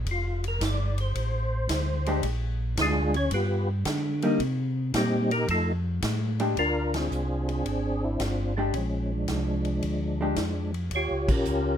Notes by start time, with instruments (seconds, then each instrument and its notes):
0.06 tonewheel organ F1, kick, ride
0.11 tonewheel organ F4
0.44 ride
0.48 tonewheel organ A#4
0.61 tonewheel organ G1, kick, snare, hi-hat pedal, ride
0.66 tonewheel organ D5
0.98 tonewheel organ C5, ride
1.15 tonewheel organ A1, kick, ride
1.69 tonewheel organ D2, kick, snare, hi-hat pedal, ride
2.06 hollow-body jazz guitar G#3 D4 G4, ride
2.23 tonewheel organ A#1, kick, ride
2.77 tonewheel organ D2 G#4, kick, snare, hi-hat pedal, ride
2.81 tonewheel organ G#3 D4 F4
3.14 tonewheel organ C#4 C#5, ride
3.31 tonewheel organ G2 B3 F4 G4 B4, kick, ride
3.85 tonewheel organ D3, kick, snare, hi-hat pedal, ride
4.22 hollow-body jazz guitar G3 A#3 D#4, ride
4.39 tonewheel organ C3, kick, ride
4.94 tonewheel organ A#2 G3 C4 D#4 G4, kick, snare, hi-hat pedal, ride
5.31 tonewheel organ A#3 D#4 G4 A#4, ride
5.48 tonewheel organ F2 A3 D#4 F4 A4, kick, ride
6.02 tonewheel organ A2, kick, snare, hi-hat pedal, ride
6.40 hollow-body jazz guitar G#3 D4 G4, ride
6.57 tonewheel organ D2 D4 F4 A#4, kick, ride
6.94 tonewheel organ C4 D4 G#4, snare, ride
7.11 tonewheel organ C2, hi-hat pedal
7.48 tonewheel organ C4 D4 G#4, ride
7.65 tonewheel organ G#1, kick, ride
8.04 tonewheel organ E4
8.20 tonewheel organ G1 F4, kick, snare, hi-hat pedal, ride
8.57 hollow-body jazz guitar G#3 D4 G4, tonewheel organ D4
8.73 tonewheel organ A#1 F3 G#3 C#4, kick, ride
9.12 tonewheel organ F3 G#3 D4
9.28 tonewheel organ C2, kick, snare, hi-hat pedal, ride
9.65 ride
9.82 tonewheel organ D2, kick, ride
10.21 hollow-body jazz guitar G#3 D4 G4
10.36 tonewheel organ F2, kick, snare, hi-hat pedal, ride
10.74 ride
10.91 tonewheel organ D#2, kick, ride
10.95 tonewheel organ F4 G4 C#5
11.11 tonewheel organ C#2
11.28 tonewheel organ A#1 C#4 G4 A#4, kick, crash
11.45 tonewheel organ C#2, hi-hat pedal